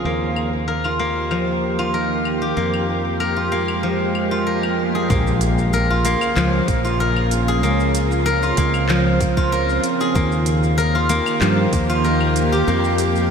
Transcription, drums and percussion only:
0.36 claves medium
0.84 claves medium
1.31 claves medium
1.79 claves medium
2.25 claves medium
2.74 claves medium
3.20 claves medium
3.68 claves medium
4.15 claves medium
4.63 claves medium
5.10 kick loud
5.10 shaker soft
5.27 shaker soft
5.41 closed hi-hat medium
5.41 shaker medium
5.58 shaker soft
5.73 shaker soft
6.05 closed hi-hat medium
6.05 shaker medium
6.21 claves medium
6.21 shaker soft
6.37 clap medium
6.37 shaker soft
6.68 kick loud
6.68 closed hi-hat medium
6.68 shaker medium
6.85 shaker soft
7.00 shaker soft
7.16 claves medium
7.31 closed hi-hat medium
7.31 shaker medium
7.48 shaker soft
7.63 shaker soft
7.80 shaker soft
7.95 closed hi-hat medium
7.95 shaker medium
8.11 shaker soft
8.26 shaker soft
8.43 shaker soft
8.57 kick medium
8.57 closed hi-hat medium
8.57 shaker medium
8.74 claves medium
8.74 shaker soft
8.89 clap medium
8.89 shaker soft
9.21 kick loud
9.21 closed hi-hat medium
9.21 shaker medium
9.37 kick medium
9.37 shaker soft
9.53 shaker soft
9.69 shaker soft
9.84 closed hi-hat medium
9.84 shaker medium
10.00 shaker soft
10.15 kick loud
10.15 shaker soft
10.32 shaker soft
10.46 closed hi-hat medium
10.46 shaker medium
10.63 shaker soft
10.78 shaker soft
11.09 closed hi-hat medium
11.09 shaker medium
11.26 claves medium
11.26 shaker soft
11.41 clap medium
11.41 shaker soft
11.73 kick loud
11.73 closed hi-hat medium
11.73 shaker medium
11.90 shaker soft
12.04 shaker soft
12.21 claves medium
12.36 closed hi-hat medium
12.36 shaker medium
12.53 shaker soft
12.68 shaker soft
12.84 shaker soft
12.98 closed hi-hat medium
12.98 shaker medium
13.16 shaker soft

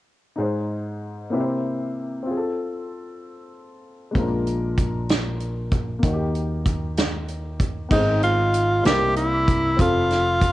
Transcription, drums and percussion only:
4.15 kick medium
4.15 closed hi-hat medium
4.47 closed hi-hat soft
4.78 kick medium
4.78 closed hi-hat medium
5.09 snare medium
5.09 closed hi-hat medium
5.40 closed hi-hat soft
5.72 kick medium
5.72 closed hi-hat soft
6.03 kick medium
6.03 closed hi-hat medium
6.35 closed hi-hat soft
6.66 kick medium
6.66 closed hi-hat medium
6.97 snare medium
6.97 closed hi-hat medium
7.28 closed hi-hat soft
7.60 kick medium
7.60 closed hi-hat soft
7.91 kick medium
7.91 crash medium
8.23 closed hi-hat soft
8.54 closed hi-hat medium
8.85 snare medium
8.85 closed hi-hat medium
9.16 closed hi-hat soft
9.48 kick medium
9.48 closed hi-hat medium
9.79 kick medium
9.79 closed hi-hat medium
10.10 snare soft
10.10 closed hi-hat soft
10.41 kick medium
10.41 closed hi-hat medium

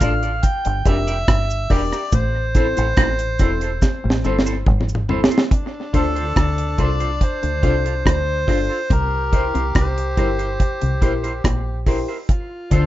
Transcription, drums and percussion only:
0.00 kick medium
0.00 closed hi-hat medium
0.00 cabasa medium
0.23 closed hi-hat medium
0.43 kick loud
0.43 closed hi-hat medium
0.43 cabasa medium
0.65 closed hi-hat medium
0.85 kick medium
0.85 closed hi-hat medium
0.85 cabasa medium
1.08 closed hi-hat soft
1.08 cabasa medium
1.28 kick loud
1.28 cross-stick loud
1.28 closed hi-hat medium
1.50 cabasa medium
1.70 kick medium
1.70 open hi-hat medium
1.93 cross-stick medium
1.93 cabasa medium
2.12 kick loud
2.12 closed hi-hat medium
2.12 cabasa medium
2.55 kick loud
2.55 closed hi-hat medium
2.55 cabasa medium
2.77 closed hi-hat soft
2.77 cabasa medium
2.97 kick loud
2.97 cross-stick loud
2.97 closed hi-hat medium
3.19 closed hi-hat medium
3.19 cabasa soft
3.39 kick medium
3.39 closed hi-hat medium
3.39 cabasa medium
3.61 closed hi-hat medium
3.82 kick loud
3.82 snare medium
3.82 cabasa medium
4.10 snare medium
4.24 cabasa medium
4.39 snare medium
4.46 cabasa medium
4.66 kick loud
4.66 mid tom medium
4.81 mid tom medium
4.89 cabasa medium
4.95 mid tom medium
5.09 floor tom medium
5.24 snare loud
5.31 cabasa medium
5.38 snare medium
5.51 kick loud
5.51 closed hi-hat medium
5.94 kick loud
5.94 closed hi-hat medium
6.16 closed hi-hat soft
6.36 kick loud
6.36 cross-stick loud
6.36 closed hi-hat medium
6.58 closed hi-hat medium
6.78 kick medium
6.78 closed hi-hat medium
7.00 closed hi-hat soft
7.21 kick medium
7.21 closed hi-hat medium
7.43 closed hi-hat medium
7.63 kick medium
7.63 closed hi-hat medium
7.86 closed hi-hat medium
8.06 kick loud
8.06 cross-stick loud
8.06 closed hi-hat medium
8.48 kick medium
8.48 open hi-hat medium
8.90 kick loud
8.90 closed hi-hat medium
9.33 kick medium
9.33 closed hi-hat medium
9.55 closed hi-hat medium
9.75 kick loud
9.75 cross-stick loud
9.75 closed hi-hat medium
9.98 closed hi-hat medium
10.17 kick medium
10.17 closed hi-hat medium
10.39 closed hi-hat soft
10.60 kick loud
10.60 closed hi-hat medium
10.81 closed hi-hat medium
11.02 kick medium
11.02 closed hi-hat medium
11.24 closed hi-hat soft
11.44 kick loud
11.44 cross-stick loud
11.44 closed hi-hat medium
11.87 kick medium
11.87 open hi-hat medium
12.29 kick loud
12.29 closed hi-hat medium
12.71 kick medium
12.71 closed hi-hat medium

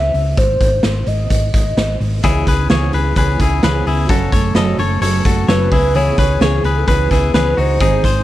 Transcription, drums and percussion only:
0.14 open hi-hat medium
0.37 kick loud
0.37 closed hi-hat medium
0.61 kick medium
0.61 closed hi-hat medium
0.83 snare medium
0.83 closed hi-hat medium
1.07 closed hi-hat medium
1.30 kick medium
1.30 closed hi-hat medium
1.54 kick medium
1.54 closed hi-hat medium
1.77 snare medium
1.77 closed hi-hat medium
2.01 open hi-hat medium
2.23 kick loud
2.23 closed hi-hat medium
2.47 kick medium
2.47 closed hi-hat medium
2.70 snare loud
2.70 closed hi-hat medium
2.93 closed hi-hat medium
3.16 kick medium
3.16 closed hi-hat medium
3.40 kick medium
3.40 closed hi-hat medium
3.63 snare medium
3.63 closed hi-hat medium
3.87 open hi-hat medium
4.09 kick loud
4.09 closed hi-hat medium
4.32 kick medium
4.32 closed hi-hat medium
4.55 snare medium
4.55 closed hi-hat medium
4.79 closed hi-hat medium
5.02 closed hi-hat medium
5.25 kick medium
5.25 closed hi-hat medium
5.49 snare loud
5.49 closed hi-hat medium
5.72 kick loud
5.72 open hi-hat medium
5.95 closed hi-hat medium
6.18 kick medium
6.18 closed hi-hat medium
6.41 snare medium
6.41 closed hi-hat medium
6.64 closed hi-hat medium
6.88 kick medium
6.88 closed hi-hat medium
7.11 kick medium
7.11 closed hi-hat medium
7.34 snare medium
7.34 closed hi-hat medium
7.58 open hi-hat medium
7.80 kick loud
7.80 closed hi-hat medium
8.04 kick medium
8.04 closed hi-hat medium

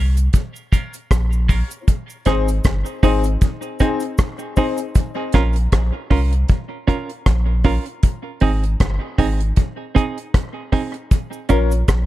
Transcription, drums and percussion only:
0.17 closed hi-hat medium
0.17 cabasa medium
0.33 kick loud
0.33 closed hi-hat medium
0.33 cabasa medium
0.56 cabasa soft
0.73 kick medium
0.73 closed hi-hat medium
0.73 cabasa medium
0.94 closed hi-hat soft
0.94 cabasa medium
1.11 kick loud
1.11 cross-stick loud
1.11 closed hi-hat medium
1.11 cabasa medium
1.33 cabasa soft
1.49 kick medium
1.49 open hi-hat medium
1.49 cabasa medium
1.71 closed hi-hat soft
1.71 cabasa medium
1.88 kick loud
1.88 closed hi-hat medium
1.88 cabasa medium
2.10 cabasa soft
2.25 kick medium
2.25 cross-stick medium
2.25 closed hi-hat medium
2.25 cabasa medium
2.48 closed hi-hat soft
2.48 cabasa medium
2.64 kick loud
2.64 cross-stick loud
2.64 closed hi-hat medium
2.64 cabasa medium
2.86 cabasa medium
3.03 kick medium
3.03 open hi-hat medium
3.03 cabasa soft
3.24 closed hi-hat medium
3.24 cabasa medium
3.41 kick loud
3.41 closed hi-hat medium
3.41 cabasa medium
3.62 cabasa soft
3.79 kick medium
3.79 closed hi-hat medium
3.79 cabasa medium
4.00 closed hi-hat medium
4.00 cabasa medium
4.18 kick loud
4.18 cross-stick loud
4.18 closed hi-hat medium
4.18 cabasa medium
4.39 cabasa medium
4.56 kick medium
4.56 open hi-hat medium
4.56 cabasa medium
4.78 closed hi-hat soft
4.78 cabasa medium
4.95 kick loud
4.95 closed hi-hat medium
4.95 cabasa medium
5.32 kick medium
5.32 cross-stick medium
5.32 closed hi-hat medium
5.56 closed hi-hat medium
5.72 kick loud
5.72 cross-stick loud
5.72 closed hi-hat medium
6.11 kick loud
6.11 open hi-hat medium
6.33 closed hi-hat medium
6.48 kick loud
6.48 closed hi-hat medium
6.88 kick medium
6.88 closed hi-hat medium
7.10 closed hi-hat soft
7.26 kick loud
7.26 cross-stick loud
7.26 closed hi-hat medium
7.64 kick medium
7.64 open hi-hat medium
7.86 closed hi-hat soft
8.03 kick loud
8.03 closed hi-hat loud
8.40 kick medium
8.40 open hi-hat medium
8.64 closed hi-hat medium
8.80 kick loud
8.80 cross-stick loud
8.80 closed hi-hat medium
9.19 kick medium
9.19 open hi-hat medium
9.40 closed hi-hat medium
9.56 kick loud
9.56 closed hi-hat medium
9.96 kick medium
9.96 closed hi-hat medium
10.18 closed hi-hat soft
10.34 kick loud
10.34 cross-stick loud
10.34 closed hi-hat medium
10.72 kick medium
10.72 open hi-hat medium
10.94 closed hi-hat soft
11.11 kick loud
11.11 closed hi-hat medium
11.11 cabasa medium
11.33 cabasa soft
11.49 kick medium
11.49 closed hi-hat medium
11.49 cabasa medium
11.71 closed hi-hat medium
11.71 cabasa medium
11.88 kick loud
11.88 cross-stick loud
11.88 closed hi-hat medium
11.88 cabasa medium

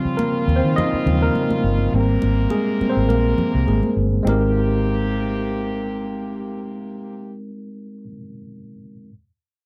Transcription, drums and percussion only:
0.19 high conga medium
0.49 muted conga soft
0.78 muted conga soft
0.78 low conga medium
1.07 low conga medium
1.35 high conga medium
1.51 high conga medium
2.22 muted conga medium
2.50 high conga medium
2.81 muted conga soft
3.10 muted conga soft
3.38 low conga medium
3.68 high conga medium
3.83 high conga medium
4.27 muted conga medium

